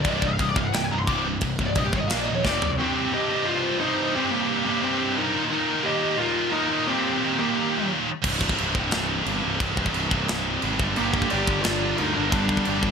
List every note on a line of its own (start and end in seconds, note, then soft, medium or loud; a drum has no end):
0.00 0.07 D5 medium
0.05 0.21 C1 medium
0.05 0.22 C2 medium
0.05 0.22 G2 medium
0.05 0.23 C3 loud
0.05 kick loud
0.05 crash medium
0.09 0.16 D#5 loud
0.16 0.26 D5 medium
0.22 0.38 C1 medium
0.22 0.39 C2 medium
0.22 0.39 G2 medium
0.22 kick medium
0.26 0.33 D#5 loud
0.33 0.41 F5 loud
0.39 0.55 C1 loud
0.39 0.55 C2 medium
0.39 0.56 G2 medium
0.39 0.49 D#5 medium
0.39 kick medium
0.39 crash medium
0.49 0.57 D5 loud
0.56 0.72 C1 medium
0.56 0.71 C2 medium
0.56 0.72 G2 medium
0.56 0.66 F5 loud
0.56 kick loud
0.64 0.73 F#5 medium
0.73 0.90 C1 medium
0.73 0.89 C2 medium
0.73 0.89 G2 medium
0.73 0.84 G5 medium
0.73 snare loud
0.73 crash medium
0.84 0.92 G#5 loud
0.91 1.07 C1 medium
0.91 1.06 C2 medium
0.91 1.07 G2 medium
0.91 0.99 A#5 loud
0.99 1.07 C6 loud
1.07 1.39 C1 loud
1.07 1.23 C2 medium
1.07 1.24 G2 medium
1.07 1.25 C3 loud
1.07 1.18 D6 loud
1.07 kick medium
1.07 crash medium
1.25 1.41 C2 medium
1.25 1.41 G2 medium
1.41 1.58 C1 medium
1.41 1.58 C2 medium
1.41 1.58 G2 medium
1.41 kick loud
1.41 crash medium
1.59 1.75 C1 loud
1.59 1.76 C2 medium
1.59 1.76 G2 medium
1.59 kick medium
1.66 1.77 D5 loud
1.75 1.92 A#1 medium
1.75 1.92 C2 medium
1.75 1.93 G2 medium
1.75 1.86 D#5 loud
1.75 kick medium
1.75 crash medium
1.84 1.93 G4 medium
1.92 2.09 G#1 medium
1.92 2.09 C2 medium
1.92 2.09 G2 medium
1.92 1.99 C5 loud
1.92 kick loud
1.99 2.09 D#5 medium
2.08 2.27 A#2 loud
2.08 2.27 F3 loud
2.08 2.28 A#3 loud
2.08 2.18 F5 loud
2.08 snare loud
2.08 crash medium
2.12 2.27 A#1 medium
2.17 2.24 D5 medium
2.24 2.44 A#2 medium
2.24 2.44 F3 medium
2.24 2.34 D#5 loud
2.31 2.44 D#1 loud
2.31 2.44 C#5 loud
2.44 2.61 F1 medium
2.44 2.61 F2 medium
2.44 2.61 C3 medium
2.44 2.62 F3 loud
2.44 2.71 D5 loud
2.44 kick medium
2.44 snare medium
2.62 2.79 C2 medium
2.62 2.78 F2 medium
2.62 2.78 C3 medium
2.62 floor tom medium
2.78 2.85 C2 medium
2.78 2.86 G2 loud
2.78 3.14 C4 loud
2.78 3.11 G4 medium
2.84 2.93 C2 medium
2.84 2.94 G2 medium
2.84 3.30 C3 loud
2.93 3.00 C2 medium
2.93 3.02 G2 medium
3.01 3.08 C2 medium
3.01 3.08 G2 medium
3.08 3.16 C2 medium
3.08 3.16 G2 medium
3.13 3.45 G4 loud
3.13 3.46 D#5 medium
3.17 3.24 C2 medium
3.17 3.24 G2 medium
3.24 3.30 C2 medium
3.24 3.32 G2 medium
3.30 3.38 C2 medium
3.30 3.40 G2 medium
3.30 4.15 C3 medium
3.38 3.46 C2 medium
3.38 3.48 G2 medium
3.45 3.54 C2 medium
3.45 3.55 G2 medium
3.45 3.80 F4 loud
3.45 3.79 C5 medium
3.54 3.62 C2 medium
3.54 3.62 G2 medium
3.62 3.69 C2 medium
3.62 3.70 G2 medium
3.69 3.77 C2 medium
3.69 3.78 G2 medium
3.77 3.85 C2 medium
3.77 3.86 G2 medium
3.77 4.16 D#4 loud
3.77 4.13 C5 medium
3.86 3.92 C2 medium
3.86 3.92 G2 medium
3.92 3.99 C2 medium
3.92 4.00 G2 medium
4.00 4.07 C2 medium
4.00 4.08 G2 medium
4.08 4.15 C2 soft
4.08 4.16 G2 medium
4.15 4.24 C2 medium
4.15 4.24 G2 loud
4.15 4.31 C4 loud
4.15 4.31 G4 medium
4.19 4.66 C3 loud
4.24 4.31 C2 medium
4.24 4.33 G2 medium
4.31 4.38 C2 medium
4.31 4.40 G2 medium
4.31 4.65 A#3 loud
4.31 4.64 G4 medium
4.39 4.46 C2 medium
4.39 4.48 G2 medium
4.46 4.53 C2 medium
4.46 4.56 G2 medium
4.53 4.61 C2 medium
4.53 4.64 G2 medium
4.61 4.69 C2 medium
4.61 4.72 G2 medium
4.66 4.75 C2 medium
4.66 5.36 G2 medium
4.66 5.34 C3 loud
4.66 4.83 A#3 medium
4.66 4.81 G4 medium
4.73 4.83 C2 medium
4.73 4.80 G2 medium
4.81 4.90 C2 medium
4.81 4.88 G2 medium
4.81 5.19 C4 loud
4.81 5.15 G4 medium
4.89 4.98 C2 medium
4.89 4.96 G2 medium
4.96 5.05 C2 medium
4.96 5.03 G2 medium
5.04 5.13 C2 medium
5.04 5.12 G2 medium
5.13 5.21 C2 medium
5.13 5.20 G2 medium
5.13 5.41 A#4 medium
5.18 5.28 C2 medium
5.18 5.28 G2 medium
5.18 5.42 D#4 loud
5.28 5.35 C2 medium
5.28 5.36 G2 medium
5.36 5.43 D#2 loud
5.36 5.45 A#2 loud
5.36 5.88 D#3 loud
5.43 5.50 D#2 medium
5.43 5.53 A#2 medium
5.51 5.58 D#2 medium
5.51 5.61 A#2 medium
5.51 5.87 D#4 loud
5.51 5.83 A#4 medium
5.58 5.65 D#2 medium
5.58 5.69 A#2 medium
5.66 5.72 D#2 medium
5.66 5.76 A#2 loud
5.72 5.80 D#2 medium
5.76 5.84 A#2 medium
5.80 5.87 D#2 medium
5.80 6.17 G4 loud
5.85 5.95 D#2 medium
5.85 5.92 A#2 medium
5.85 6.72 D#3 loud
5.85 6.18 D#5 medium
5.93 6.03 D#2 medium
5.93 6.00 A#2 medium
6.00 6.10 D#2 medium
6.00 6.08 A#2 medium
6.08 6.17 D#2 medium
6.08 6.16 A#2 medium
6.16 6.24 D#2 medium
6.16 6.22 A#2 medium
6.16 6.52 F4 loud
6.16 6.52 A#4 medium
6.23 6.33 D#2 medium
6.23 6.31 A#2 medium
6.32 6.40 D#2 medium
6.32 6.39 A#2 medium
6.40 6.47 D#2 medium
6.40 6.48 A#2 medium
6.48 6.55 D#2 medium
6.48 6.54 A#2 medium
6.52 6.63 D#2 medium
6.52 6.62 A#2 medium
6.52 6.89 D#4 loud
6.52 6.86 A#4 medium
6.63 6.71 D#2 medium
6.63 6.71 A#2 medium
6.71 6.79 D#2 loud
6.71 6.80 A#2 loud
6.71 7.23 D#3 loud
6.79 6.87 D#2 medium
6.79 6.87 A#2 medium
6.87 6.94 D#2 medium
6.87 6.93 A#2 medium
6.87 7.39 C4 loud
6.87 7.36 G4 medium
6.94 7.01 D#2 medium
6.94 7.01 A#2 medium
7.01 7.09 D#2 medium
7.01 7.09 A#2 medium
7.10 7.17 D#2 medium
7.10 7.17 A#2 medium
7.18 7.25 D#2 medium
7.18 7.25 A#2 medium
7.25 7.32 D#2 medium
7.25 7.33 A#2 medium
7.25 8.08 D#3 loud
7.33 7.40 D#2 medium
7.33 7.40 A#2 loud
7.39 7.47 D#2 medium
7.39 7.47 A#2 medium
7.39 7.87 A#3 medium
7.39 7.87 G4 medium
7.48 7.54 D#2 medium
7.48 7.55 A#2 medium
7.54 7.62 D#2 medium
7.54 7.63 A#2 medium
7.62 7.70 D#2 medium
7.62 7.69 A#2 medium
7.70 7.77 D#2 medium
7.70 7.77 A#2 medium
7.78 7.84 D#2 medium
7.78 7.85 A#2 medium
7.84 7.92 D#2 medium
7.84 7.93 A#2 medium
7.93 8.00 D#2 medium
7.93 8.00 A#2 medium
8.00 8.08 D#2 medium
8.00 8.08 A#2 medium
8.24 8.51 C1 medium
8.24 8.32 C2 medium
8.24 8.32 G2 loud
8.24 8.73 C3 loud
8.24 kick loud
8.24 china medium
8.24 crash loud
8.32 8.38 C2 medium
8.32 8.40 G2 medium
8.39 8.46 C2 medium
8.39 8.46 G2 medium
8.39 kick medium
8.47 8.53 C2 medium
8.47 8.54 G2 medium
8.47 kick medium
8.54 8.61 C2 medium
8.54 8.62 G2 medium
8.58 8.73 C1 medium
8.58 8.69 C2 medium
8.58 8.70 G2 medium
8.58 china medium
8.69 8.76 C2 medium
8.69 8.77 G2 medium
8.69 9.59 C3 medium
8.75 8.89 C1 medium
8.75 8.84 C2 medium
8.75 8.85 G2 medium
8.75 kick loud
8.84 8.90 C2 medium
8.84 8.92 G2 medium
8.91 9.21 C1 medium
8.91 8.98 C2 medium
8.91 8.99 G2 medium
8.91 snare loud
8.91 china medium
8.99 9.07 C2 medium
8.99 9.07 G2 medium
9.08 9.14 C2 medium
9.08 9.15 G2 medium
9.14 9.21 C2 medium
9.14 9.23 G2 medium
9.22 9.29 C2 medium
9.22 9.29 G2 medium
9.26 9.40 G1 loud
9.26 9.37 C2 medium
9.26 9.37 G2 medium
9.26 china medium
9.37 9.44 C2 medium
9.37 9.45 G2 medium
9.45 9.58 C1 medium
9.45 9.51 C2 medium
9.45 9.53 G2 medium
9.51 9.59 C2 medium
9.51 9.61 G2 medium
9.60 9.88 C1 medium
9.60 9.69 C2 medium
9.60 9.70 G2 medium
9.60 10.09 C3 loud
9.60 kick loud
9.60 china medium
9.70 9.77 C2 medium
9.70 9.77 G2 medium
9.77 9.85 C2 medium
9.77 9.85 G2 medium
9.77 kick medium
9.85 9.93 C2 medium
9.85 9.92 G2 medium
9.85 kick medium
9.93 10.08 C1 loud
9.93 10.01 C2 medium
9.93 10.00 G2 medium
9.93 china medium
10.01 10.08 C2 medium
10.01 10.08 G2 medium
10.08 10.25 C1 medium
10.08 10.16 C2 medium
10.08 10.17 G2 medium
10.08 10.78 C3 medium
10.08 kick loud
10.13 10.24 C2 medium
10.13 10.79 G2 medium
10.18 10.24 G2 medium
10.24 10.32 C2 medium
10.24 10.32 G2 medium
10.28 10.57 C1 medium
10.28 10.40 G2 medium
10.28 snare loud
10.28 china medium
10.32 10.39 C2 medium
10.40 10.48 C2 medium
10.40 10.48 G2 medium
10.48 10.56 C2 medium
10.48 10.56 G2 medium
10.56 10.64 C2 medium
10.56 10.63 G2 medium
10.62 10.77 G#1 medium
10.62 10.72 C2 medium
10.62 10.72 G2 medium
10.62 china medium
10.72 10.80 C2 medium
10.72 10.80 G2 medium
10.80 10.93 G1 medium
10.80 10.88 G2 loud
10.80 10.88 D3 loud
10.80 kick loud
10.84 11.33 G3 loud
10.89 10.97 G2 medium
10.89 10.97 D3 medium
10.96 11.25 G1 medium
10.96 11.05 G2 medium
10.96 11.04 D3 medium
10.96 11.13 A#3 loud
10.96 11.13 G4 medium
10.96 china medium
11.05 11.13 G2 medium
11.05 11.13 D3 medium
11.13 11.20 G2 medium
11.13 11.20 D3 medium
11.13 11.32 A#3 loud
11.13 11.30 G4 medium
11.13 kick medium
11.20 11.27 G2 medium
11.20 11.28 D3 medium
11.20 kick medium
11.27 11.35 G2 medium
11.27 11.36 D3 medium
11.27 11.61 G4 loud
11.27 11.62 D5 medium
11.27 china medium
11.33 11.46 G1 loud
11.33 11.43 D3 medium
11.33 12.18 G3 loud
11.37 11.44 G2 medium
11.43 11.52 G2 medium
11.43 11.51 D3 medium
11.47 11.61 G1 medium
11.47 kick loud
11.52 11.59 G2 medium
11.52 11.60 D3 medium
11.60 11.68 G2 medium
11.60 11.68 D3 medium
11.60 11.98 F4 loud
11.60 11.96 D5 medium
11.64 11.93 G1 medium
11.64 snare loud
11.64 china medium
11.68 11.75 G2 medium
11.68 11.76 D3 medium
11.75 11.83 G2 medium
11.75 11.84 D3 loud
11.84 11.91 G2 medium
11.84 11.92 D3 medium
11.91 11.99 G2 medium
11.91 12.00 D3 medium
11.95 12.06 G2 medium
11.95 12.13 D#4 loud
11.95 12.12 A#4 medium
11.95 china medium
12.00 12.13 D2 loud
12.00 12.07 D3 medium
12.06 12.14 G2 medium
12.06 12.16 D3 medium
12.13 12.23 G2 loud
12.13 12.24 D3 loud
12.13 12.31 D4 loud
12.13 12.30 A#4 medium
12.18 12.31 G1 medium
12.18 12.67 G3 loud
12.23 12.31 G2 medium
12.23 12.32 D3 medium
12.29 12.59 G1 loud
12.29 12.39 G2 medium
12.29 12.39 D3 medium
12.29 12.91 G3 medium
12.29 12.91 D4 medium
12.29 kick loud
12.29 china medium
12.40 12.46 G2 medium
12.40 12.47 D3 medium
12.46 12.53 G2 medium
12.46 12.54 D3 medium
12.46 kick medium
12.54 12.61 G2 medium
12.54 12.62 D3 medium
12.54 kick medium
12.62 12.68 G2 medium
12.62 12.70 D3 medium
12.62 china medium
12.68 12.81 G1 loud
12.68 12.75 G2 medium
12.68 12.78 D3 medium
12.68 12.91 G3 medium
12.76 12.83 G2 medium
12.76 12.85 D3 medium
12.83 12.91 G1 medium
12.83 12.91 G2 medium
12.83 12.91 D3 medium
12.83 kick medium